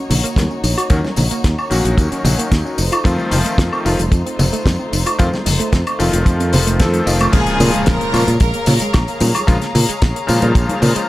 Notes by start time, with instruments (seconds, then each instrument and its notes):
Already playing: string section A#3 D#4 F#4 C#5
0.10 fingered electric bass A#1, synth arpeggio sound D#4, open hi-hat, tambourine, low conga
0.24 synth arpeggio sound A#3, closed hi-hat, tambourine
0.36 fingered electric bass D#2, synth arpeggio sound A#3, kick, snare, closed hi-hat, tambourine, high conga
0.51 synth arpeggio sound C#4, tambourine
0.64 fingered electric bass A#1, synth arpeggio sound D#4, open hi-hat, tambourine
0.78 synth arpeggio sound F#4, closed hi-hat, tambourine, high woodblock
0.90 fingered electric bass D#2, electric grand piano D#3 F#3 A#3 C#4 F#4, synth arpeggio sound A#3, kick, closed hi-hat, tambourine
1.04 synth arpeggio sound C#4, snare, tambourine, high conga
1.16 fingered electric bass A#1, synth arpeggio sound D#4, open hi-hat, tambourine, low conga
1.31 synth arpeggio sound A#3, muted fingered electric bass stroke, closed hi-hat, tambourine
1.44 fingered electric bass D#2, synth arpeggio sound A#3, kick, snare, closed hi-hat, tambourine
1.58 synth arpeggio sound C#4, tambourine, high woodblock
1.70 fingered electric bass A#1, electric grand piano D#3 F#3 A#3 C#4 F#4, synth arpeggio sound D#4, open hi-hat, tambourine
1.85 fingered electric bass A#1, synth arpeggio sound F#4, closed hi-hat, tambourine
1.98 fingered electric bass D#2, synth arpeggio sound A#3, kick, closed hi-hat, tambourine
2.12 synth arpeggio sound C#4, muted fingered electric bass stroke, closed hi-hat, tambourine
2.25 fingered electric bass A#1, synth arpeggio sound D#4, open hi-hat, tambourine, low conga
2.39 synth arpeggio sound A#3, closed hi-hat, tambourine
2.51 fingered electric bass D#2, synth arpeggio sound A#3, kick, snare, closed hi-hat, tambourine
2.65 synth arpeggio sound C#4, tambourine
2.78 fingered electric bass F1, string section A3 F4 C5, synth arpeggio sound D#4, open hi-hat, tambourine
2.92 synth arpeggio sound F4, closed hi-hat, tambourine, high woodblock
3.04 fingered electric bass F2, electric grand piano D#3 F3 A3 C4 F4, synth arpeggio sound A3, kick, closed hi-hat, tambourine
3.18 synth arpeggio sound C4, tambourine, high conga
3.31 fingered electric bass F1, synth arpeggio sound D#4, open hi-hat, tambourine, high conga, low conga
3.45 synth arpeggio sound A3, closed hi-hat, tambourine
3.58 fingered electric bass F2, synth arpeggio sound A3, kick, snare, closed hi-hat, tambourine
3.72 synth arpeggio sound C4, tambourine, high woodblock
3.85 fingered electric bass F1, electric grand piano D#3 F3 A3 C4 F4, synth arpeggio sound D#4, open hi-hat, tambourine
3.99 fingered electric bass F1, synth arpeggio sound F4, closed hi-hat, tambourine, high conga
4.12 fingered electric bass F2, synth arpeggio sound A3, kick, closed hi-hat, tambourine
4.26 synth arpeggio sound C4, closed hi-hat, tambourine
4.39 fingered electric bass F1, synth arpeggio sound D#4, open hi-hat, tambourine, low conga
4.53 synth arpeggio sound A3, closed hi-hat, tambourine
4.66 fingered electric bass F2, synth arpeggio sound A3, kick, snare, closed hi-hat, tambourine, high conga
4.79 synth arpeggio sound C4, tambourine
4.92 fingered electric bass F1, synth arpeggio sound D#4, open hi-hat, tambourine
5.06 synth arpeggio sound F4, closed hi-hat, tambourine, high woodblock
5.18 fingered electric bass F2, electric grand piano D#3 F3 A3 C4 F4, synth arpeggio sound A3, kick, closed hi-hat, tambourine
5.33 synth arpeggio sound C4, snare, tambourine, high conga
5.46 fingered electric bass F1, synth arpeggio sound D#4, open hi-hat, tambourine, high conga, low conga
5.60 synth arpeggio sound A3, muted fingered electric bass stroke, closed hi-hat, tambourine
5.72 fingered electric bass F2, synth arpeggio sound A3, kick, snare, closed hi-hat, tambourine
5.87 synth arpeggio sound C4, closed hi-hat, tambourine, high woodblock
5.99 fingered electric bass F1, electric grand piano D#3 F3 A3 C4 F4, synth arpeggio sound D#4, open hi-hat, tambourine
6.13 fingered electric bass F1, synth arpeggio sound F4, closed hi-hat, tambourine, high conga
6.26 fingered electric bass F2, synth arpeggio sound A3, kick, closed hi-hat, tambourine
6.40 synth arpeggio sound C4, closed hi-hat, tambourine
6.53 fingered electric bass F1, synth arpeggio sound C5, open hi-hat, tambourine, low conga
6.67 synth arpeggio sound A3, closed hi-hat, tambourine
6.79 fingered electric bass F2, electric grand piano D#3 F3 A3 C4 A4, synth arpeggio sound F4, kick, snare, closed hi-hat, tambourine
6.94 synth arpeggio sound A3, closed hi-hat, tambourine
7.06 fingered electric bass F1, electric grand piano D#3 F3 A3 C4 F4, synth arpeggio sound D#5, open hi-hat, tambourine
7.21 synth arpeggio sound A3, closed hi-hat, tambourine, high woodblock
7.32 fingered electric bass A#1, electric grand piano C#3 F3 G#3 A#3 F4, synth arpeggio sound G#3, string section G#4 C#5 F5 A#5, violin section G#4, kick, closed hi-hat, crash, tambourine, impact
7.46 synth arpeggio sound A#3, closed hi-hat, tambourine
7.60 fingered electric bass A#2, synth arpeggio sound C#4, open hi-hat, tambourine, low conga
7.74 synth arpeggio sound G#3, muted fingered electric bass stroke, closed hi-hat, tambourine
7.86 fingered electric bass A#1, synth arpeggio sound G#3, violin section A#4, kick, snare, closed hi-hat, tambourine
8.01 synth arpeggio sound A#3, closed hi-hat, tambourine
8.13 fingered electric bass A#2, electric grand piano C#3 F3 G#3 A#3 F4, synth arpeggio sound C#4, open hi-hat, tambourine, high woodblock
8.27 fingered electric bass A#2, synth arpeggio sound F4, closed hi-hat, tambourine
8.40 fingered electric bass A#1, synth arpeggio sound G#3, violin section A#4, kick, closed hi-hat, tambourine
8.54 synth arpeggio sound A#3, closed hi-hat, tambourine
8.66 fingered electric bass A#2, synth arpeggio sound C#4, open hi-hat, tambourine, high conga, low conga
8.80 synth arpeggio sound G#3, muted fingered electric bass stroke, closed hi-hat, tambourine
8.93 fingered electric bass A#1, synth arpeggio sound G#3, kick, snare, closed hi-hat, tambourine, high woodblock
9.07 synth arpeggio sound A#3, closed hi-hat, tambourine
9.20 fingered electric bass A#2, synth arpeggio sound C#4, open hi-hat, tambourine, high conga
9.35 synth arpeggio sound F4, closed hi-hat, tambourine, high conga, high woodblock
9.47 fingered electric bass A#1, electric grand piano C#3 F3 G#3 A#3 F4, synth arpeggio sound G#3, kick, closed hi-hat, tambourine
9.61 synth arpeggio sound A#3, snare, closed hi-hat, tambourine
9.75 fingered electric bass A#2, synth arpeggio sound C#4, open hi-hat, tambourine, low conga
9.88 synth arpeggio sound G#3, muted fingered electric bass stroke, closed hi-hat, tambourine
10.02 fingered electric bass A#1, synth arpeggio sound G#3, kick, snare, closed hi-hat, tambourine
10.15 synth arpeggio sound A#3, closed hi-hat, tambourine
10.27 fingered electric bass A#2, electric grand piano C#3 F3 G#3 A#3 F4, synth arpeggio sound C#4, open hi-hat, tambourine
10.42 fingered electric bass A#2, synth arpeggio sound F4, closed hi-hat, tambourine, high conga
10.55 fingered electric bass A#1, synth arpeggio sound G#3, kick, closed hi-hat, tambourine
10.69 synth arpeggio sound A#3, closed hi-hat, tambourine, high conga
10.82 fingered electric bass A#2, synth arpeggio sound C#4, open hi-hat, tambourine, low conga
10.95 synth arpeggio sound G#3, muted fingered electric bass stroke, closed hi-hat, tambourine